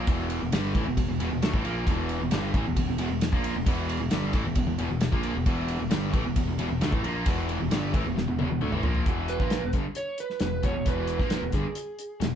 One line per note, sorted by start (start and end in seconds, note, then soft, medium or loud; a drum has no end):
0.07 0.39 E1 medium
0.07 0.40 E2 medium
0.07 0.41 B2 loud
0.07 0.41 E3 loud
0.07 kick loud
0.07 ride loud
0.30 ride medium
0.42 0.52 E1 medium
0.42 0.52 E2 medium
0.42 0.53 B2 medium
0.52 0.74 G1 medium
0.52 0.74 G2 medium
0.52 0.74 D3 medium
0.52 0.75 G3 loud
0.52 snare loud
0.52 ride loud
0.75 0.85 A1 medium
0.75 0.85 A2 loud
0.75 0.86 E3 medium
0.75 kick loud
0.75 ride medium
0.86 0.97 E1 medium
0.86 0.96 E2 medium
0.86 0.96 B2 medium
0.97 1.08 E1 medium
0.97 1.07 E2 medium
0.97 1.07 B2 medium
0.97 kick medium
0.97 ride loud
1.08 1.19 E1 medium
1.08 1.18 E2 medium
1.08 1.19 B2 medium
1.19 1.30 E1 medium
1.19 1.29 E2 medium
1.19 1.29 B2 loud
1.19 ride medium
1.30 1.42 E1 medium
1.30 1.42 E2 medium
1.30 1.41 B2 medium
1.42 1.53 D2 medium
1.42 1.52 D3 loud
1.42 1.53 A3 loud
1.42 snare loud
1.42 ride medium
1.53 1.64 A1 medium
1.53 1.64 A2 medium
1.53 1.64 E3 loud
1.53 kick loud
1.64 1.86 A#1 medium
1.64 1.86 A#2 medium
1.64 1.86 F3 loud
1.64 1.87 A#3 loud
1.64 ride medium
1.86 2.19 E1 medium
1.86 2.18 E2 medium
1.86 2.19 B2 medium
1.86 2.20 E3 medium
1.86 kick loud
1.86 ride medium
2.09 ride medium
2.20 2.32 E1 medium
2.20 2.31 E2 medium
2.20 2.31 B2 medium
2.31 2.53 G1 medium
2.31 2.54 G2 medium
2.31 2.53 D3 loud
2.31 2.54 G3 loud
2.31 snare loud
2.31 ride loud
2.53 2.65 A1 medium
2.53 2.65 A2 medium
2.53 2.65 E3 medium
2.53 kick loud
2.53 ride medium
2.65 2.76 E1 medium
2.65 2.75 E2 medium
2.65 2.75 B2 medium
2.76 2.87 E1 medium
2.76 2.86 E2 medium
2.76 2.87 B2 medium
2.76 kick medium
2.76 ride loud
2.88 2.99 E1 medium
2.88 2.97 E2 medium
2.88 2.98 B2 medium
2.98 3.10 E1 medium
2.98 3.08 E2 medium
2.98 3.08 B2 loud
2.98 ride medium
3.09 3.32 E1 medium
3.09 3.28 E2 medium
3.09 3.28 B2 medium
3.21 snare loud
3.21 ride medium
3.32 3.54 A#1 medium
3.32 3.55 A#2 medium
3.32 3.55 F3 loud
3.32 3.55 A#3 medium
3.32 kick loud
3.44 ride medium
3.55 3.66 E1 medium
3.55 3.65 E2 medium
3.55 3.66 B2 medium
3.66 3.98 E1 medium
3.66 3.98 E2 medium
3.66 3.99 B2 loud
3.66 4.00 E3 loud
3.66 kick loud
3.66 ride loud
3.89 ride medium
3.99 4.11 E1 medium
3.99 4.10 E2 medium
3.99 4.11 B2 medium
4.10 4.33 G1 medium
4.10 4.33 G2 loud
4.10 4.33 D3 loud
4.10 4.34 G3 loud
4.10 snare loud
4.10 ride medium
4.33 4.44 A1 medium
4.33 4.44 A2 medium
4.33 4.45 E3 medium
4.33 kick medium
4.33 ride medium
4.44 4.55 E1 medium
4.44 4.54 E2 medium
4.44 4.55 B2 medium
4.55 4.66 E1 medium
4.55 4.66 E2 medium
4.55 4.66 B2 medium
4.55 kick medium
4.55 ride medium
4.67 4.77 E1 medium
4.67 4.77 E2 medium
4.67 4.78 B2 medium
4.78 4.89 E1 medium
4.78 4.89 E2 medium
4.78 4.90 B2 loud
4.78 ride medium
4.90 5.11 E1 medium
4.90 5.09 E2 medium
4.90 5.09 B2 medium
5.01 snare loud
5.01 ride medium
5.12 5.34 A#1 medium
5.12 5.35 A#2 medium
5.12 5.35 F3 medium
5.12 5.35 A#3 loud
5.12 kick medium
5.23 ride medium
5.35 5.45 E1 medium
5.35 5.45 E2 medium
5.35 5.45 B2 medium
5.46 5.78 E1 medium
5.46 5.78 E2 medium
5.46 5.79 B2 loud
5.46 5.80 E3 loud
5.46 kick loud
5.46 ride medium
5.68 ride medium
5.79 5.90 E1 medium
5.79 5.90 E2 medium
5.79 5.90 B2 medium
5.90 6.12 G1 loud
5.90 6.13 G2 medium
5.90 6.13 D3 loud
5.90 6.13 G3 loud
5.90 snare loud
5.90 ride medium
6.13 6.24 A1 medium
6.13 6.24 A2 medium
6.13 6.25 E3 loud
6.13 kick loud
6.13 ride medium
6.24 6.35 E1 medium
6.24 6.35 E2 medium
6.24 6.36 B2 medium
6.36 6.47 E1 medium
6.36 6.47 E2 medium
6.36 6.47 B2 medium
6.36 kick medium
6.36 ride medium
6.47 6.58 E1 medium
6.47 6.57 E2 medium
6.47 6.58 B2 medium
6.58 6.70 E1 medium
6.58 6.69 E2 medium
6.58 6.69 B2 medium
6.58 ride medium
6.70 6.81 E1 medium
6.70 6.82 E2 medium
6.70 6.81 B2 medium
6.81 6.92 D2 medium
6.81 6.92 D3 medium
6.81 6.92 A3 medium
6.81 snare loud
6.81 ride medium
6.92 7.03 A1 medium
6.92 7.03 A2 medium
6.92 7.04 E3 medium
6.92 kick loud
7.03 7.25 A#1 medium
7.03 7.25 A#2 medium
7.03 7.26 F3 loud
7.03 7.26 A#3 loud
7.03 ride medium
7.25 7.58 E1 medium
7.25 7.59 E2 medium
7.25 7.59 B2 loud
7.25 7.60 E3 loud
7.25 kick loud
7.25 ride medium
7.49 ride medium
7.60 7.70 E1 medium
7.60 7.70 E2 medium
7.60 7.71 B2 medium
7.71 7.92 G1 medium
7.71 7.93 G2 medium
7.71 7.93 D3 loud
7.71 7.94 G3 loud
7.71 snare loud
7.71 ride loud
7.94 8.04 A1 loud
7.94 8.05 A2 medium
7.94 8.05 E3 loud
7.94 kick loud
7.94 ride medium
8.05 8.15 E1 medium
8.05 8.15 E2 medium
8.05 8.15 B2 medium
8.16 8.27 E1 medium
8.16 8.27 E2 medium
8.16 8.27 B2 medium
8.16 snare medium
8.28 8.38 E1 medium
8.28 8.37 E2 medium
8.28 8.38 B2 medium
8.38 8.49 E1 loud
8.38 8.49 E2 medium
8.38 8.49 B2 loud
8.38 high tom medium
8.50 8.61 E1 medium
8.50 8.61 E2 medium
8.50 8.60 B2 medium
8.61 8.72 D2 loud
8.61 8.72 D3 medium
8.61 8.72 A3 medium
8.61 mid tom medium
8.72 8.83 A1 medium
8.72 8.82 A2 medium
8.72 8.83 E3 medium
8.72 mid tom medium
8.83 9.05 A#1 medium
8.83 9.05 A#2 loud
8.83 9.06 F3 loud
8.83 9.06 A#3 loud
8.83 floor tom loud
8.95 floor tom medium
9.05 9.38 E1 medium
9.05 9.39 E2 medium
9.05 9.39 B2 medium
9.05 9.40 E3 medium
9.05 kick loud
9.05 closed hi-hat medium
9.28 9.71 B4 loud
9.28 closed hi-hat medium
9.40 9.61 A#1 medium
9.40 9.62 A#2 medium
9.40 9.62 F3 medium
9.40 9.62 A#3 medium
9.40 kick loud
9.50 snare loud
9.50 closed hi-hat medium
9.62 9.73 E1 medium
9.62 9.73 E2 soft
9.62 9.74 B2 medium
9.73 9.84 G1 medium
9.73 9.84 G2 medium
9.73 9.85 D3 medium
9.73 kick medium
9.73 closed hi-hat medium
9.95 10.17 C#5 loud
9.95 closed hi-hat medium
10.18 10.41 B4 medium
10.18 closed hi-hat medium
10.30 snare soft
10.40 10.62 E1 medium
10.40 10.59 E2 medium
10.40 10.59 B2 medium
10.40 10.65 B4 medium
10.40 snare medium
10.40 closed hi-hat medium
10.63 10.74 E1 medium
10.63 10.73 E2 medium
10.63 10.74 B2 loud
10.63 10.87 C#5 medium
10.63 kick loud
10.63 closed hi-hat medium
10.74 10.86 E1 medium
10.74 10.84 E2 medium
10.74 10.85 B2 medium
10.85 11.18 E1 medium
10.85 11.19 E2 medium
10.85 11.19 B2 loud
10.85 11.19 E3 loud
10.85 11.50 B4 medium
10.85 kick loud
10.85 closed hi-hat medium
11.08 closed hi-hat medium
11.19 11.41 A#1 medium
11.19 11.41 A#2 medium
11.19 11.42 F3 medium
11.19 11.42 A#3 medium
11.19 kick medium
11.19 snare soft
11.30 snare loud
11.30 closed hi-hat medium
11.42 11.53 E1 medium
11.42 11.52 E2 soft
11.42 11.53 B2 medium
11.52 11.64 G1 medium
11.52 11.64 G2 medium
11.52 11.64 D3 medium
11.52 12.35 G#4 medium
11.52 kick medium
11.52 closed hi-hat medium
11.75 closed hi-hat medium
11.99 closed hi-hat medium
12.20 12.35 E1 medium
12.20 12.35 E2 medium
12.20 12.35 B2 medium
12.20 snare loud
12.20 closed hi-hat medium